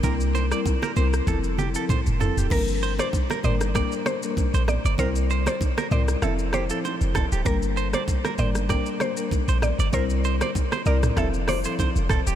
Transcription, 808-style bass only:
X:1
M:4/4
L:1/16
Q:"Swing 16ths" 1/4=97
K:Gdor
V:1 name="808-style bass" clef=bass
C,,4 z2 C,,2 F,,,4 z F,,,2 D,,, | G,,,4 z2 G,,,3 z4 B,,,2 G,,, | C,,4 z2 C,,2 F,,,4 z F,,,2 D,,, | G,,,4 z2 G,,,3 z4 B,,,2 G,,, |
C,,4 z2 C,,2 F,,,4 z F,,,2 D,,, |]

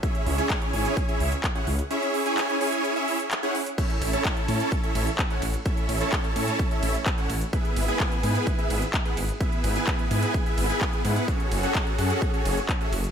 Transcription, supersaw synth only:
X:1
M:4/4
L:1/16
Q:1/4=128
K:A
V:1 name="Supersaw synth"
[CEGce]3 [CEGcg]3 [CEGcg]3 [CEGce]2 z2 [CEGcf] z2 | [CEGce]3 [CEGcg]3 [CEGcg]3 [CEGce]2 z2 [CEGcf] z2 | [CEAce]3 [CEAca]3 [CEAca]3 [CEAce]2 z2 [CEAcf] z2 | [CEAce]3 [CEAca]3 [CEAca]3 [CEAce]2 z2 [CEAcf] z2 |
[B,EGBe]3 [B,EGBg]3 [B,EGBg]3 [B,EGBe]2 z2 [B,EGBf] z2 | [B,EGBe]3 [B,EGBg]3 [B,EGBg]3 [B,EGBe]2 [B,EGBg]3 [B,EGBf]2 | [CFGAc]3 [CFGAf]3 [CFGAf]3 [CFGAc]2 z2 [CFGAe] z2 |]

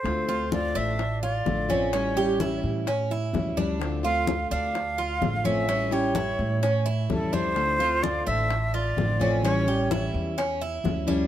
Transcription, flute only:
X:1
M:4/4
L:1/8
Q:1/4=128
K:Dm
V:1 name="Flute"
c2 d e2 d3 | ^c3 z4 z | z f2 f4 e- | e ^c4 z A =c- |
c2 d e2 d3 | ^c3 z4 z |]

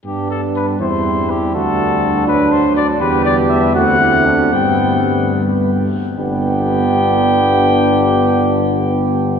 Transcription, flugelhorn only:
X:1
M:6/8
L:1/16
Q:3/8=75
K:G
V:1 name="Flugelhorn"
D6 E6 | F6 D6 | G6 F2 E2 D2 | B,8- B, z3 |
G12- | G12 |]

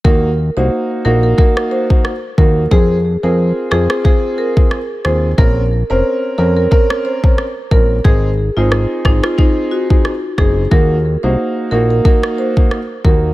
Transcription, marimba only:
X:1
M:4/4
L:1/16
Q:"Swing 16ths" 1/4=90
K:Ebdor
V:1 name="Marimba"
B z2 c z2 B B B z c z3 B z | A z2 B z2 A A A z B z3 c z | B z2 c z2 B B B z c z3 B z | A z2 F z2 E F E z G z3 A z |
B z2 c z2 B B B z c z3 B z |]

